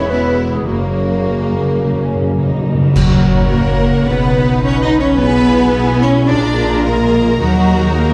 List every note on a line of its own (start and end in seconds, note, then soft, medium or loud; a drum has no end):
0.00 0.67 E1 medium
0.00 0.70 E2 medium
0.00 0.11 E3 medium
0.00 0.11 G#3 medium
0.00 0.70 G#3 medium
0.00 0.28 B3 medium
0.00 0.68 B3 medium
0.00 0.10 E4 medium
0.00 0.24 F#4 soft
0.00 0.12 C#5 loud
0.10 0.67 B2 medium
0.10 0.67 E3 medium
0.10 0.67 G#3 medium
0.10 0.54 B3 medium
0.10 0.69 E4 medium
0.10 0.53 E4 medium
0.10 0.42 B4 medium
0.29 0.70 B3 soft
0.48 0.69 B2 soft
0.54 0.68 G#3 medium
0.54 0.68 B3 medium
0.54 0.67 G#4 medium
0.66 2.73 F#1 medium
0.66 2.95 F#2 soft
0.66 0.74 F#2 soft
0.66 2.65 C#3 medium
0.66 2.77 C#3 medium
0.66 2.64 F#3 medium
0.66 2.64 A#3 medium
0.66 1.18 A#3 soft
0.66 2.68 A#3 medium
0.66 2.73 A#3 medium
0.66 2.64 F#4 medium
0.75 0.81 F#2 soft
0.82 0.89 F#2 soft
0.82 1.22 C#4 soft
0.90 0.96 F#2 soft
0.97 1.04 F#2 soft
1.05 1.12 F#2 soft
1.05 1.38 D#4 soft
1.13 1.19 F#2 soft
1.20 1.27 F#2 soft
1.20 1.78 A#3 soft
1.20 2.00 C#4 soft
1.28 1.36 F#2 soft
1.37 1.44 F#2 soft
1.42 1.52 F#2 soft
1.42 1.79 A#3 soft
1.53 1.59 F#2 soft
1.60 1.67 F#2 soft
1.60 2.76 C#3 soft
1.69 1.75 F#2 medium
1.76 1.83 F#2 soft
1.81 1.91 F#2 medium
1.81 2.57 A#3 soft
1.81 2.38 C#4 medium
1.93 1.99 F#2 medium
2.00 2.06 F#2 medium
2.00 2.37 C#4 soft
2.07 2.14 F#2 medium
2.15 2.21 F#2 medium
2.21 2.28 F#2 medium
2.21 2.53 D#4 soft
2.29 2.36 F#2 medium
2.37 2.44 F#2 medium
2.37 3.14 C#4 soft
2.37 2.95 D#4 soft
2.45 2.50 F#2 medium
2.51 2.58 F#2 medium
2.59 2.64 F#2 medium
2.59 3.71 A#3 soft
2.66 2.73 F#2 medium
2.74 2.80 F#2 medium
2.74 2.98 C#3 soft
2.81 2.88 F#2 medium
2.95 4.05 F#1 medium
2.95 4.11 F#2 medium
2.95 3.48 F#3 medium
2.95 3.48 F#4 medium
2.95 4.05 F#4 medium
2.95 4.04 A#4 medium
2.95 4.04 C#5 medium
2.95 5.16 F#5 medium
2.95 concert bass drum medium
2.95 crash medium
3.16 3.52 C#4 soft
3.34 3.66 D#4 soft
3.50 4.08 A#3 medium
3.50 4.12 C#4 medium
3.50 4.06 A#4 medium
3.72 4.11 A#3 medium
3.90 4.11 C#3 medium
4.07 6.31 B1 medium
4.07 5.20 B2 medium
4.07 4.64 B3 medium
4.07 5.20 D#4 medium
4.07 4.64 B4 medium
4.07 5.20 B4 medium
4.07 6.31 B4 medium
4.27 4.63 D#4 medium
4.46 4.78 E4 medium
4.64 4.83 C#4 loud
4.64 5.23 D#4 medium
4.64 4.83 C#5 medium
4.82 5.93 B3 medium
4.82 5.02 D#4 loud
4.82 4.90 D#5 medium
5.01 5.22 F#3 medium
5.01 5.20 C#4 medium
5.01 5.08 C#5 medium
5.18 6.34 B2 medium
5.18 6.03 B3 loud
5.18 6.29 E4 medium
5.18 7.38 G#4 medium
5.18 6.01 B4 loud
5.18 6.30 G#5 medium
5.39 5.74 E4 medium
5.58 5.89 F#4 soft
5.76 6.33 E4 medium
5.94 6.33 B3 medium
6.02 6.31 C#4 loud
6.02 6.10 C#5 loud
6.12 7.02 G#3 medium
6.28 7.42 A#1 medium
6.28 7.43 A#2 medium
6.28 6.86 D4 loud
6.28 7.42 F4 medium
6.28 8.14 A#4 medium
6.28 6.84 D5 loud
6.28 8.14 A#5 medium
6.48 6.85 F4 medium
6.67 6.99 G4 medium
6.84 7.41 A#3 loud
6.84 7.44 F4 medium
6.84 7.39 A#4 medium
7.03 7.43 G#3 medium
7.22 7.44 F3 medium
7.41 8.14 D#2 medium
7.41 8.14 D#3 medium
7.41 7.96 F#3 loud
7.41 8.14 D#4 medium
7.41 7.96 F#4 loud
7.41 8.14 F#4 medium
7.60 7.97 F#4 medium
7.79 8.10 G#4 medium
7.97 8.14 A#3 loud
7.97 8.14 F#4 medium
7.97 8.14 A#4 medium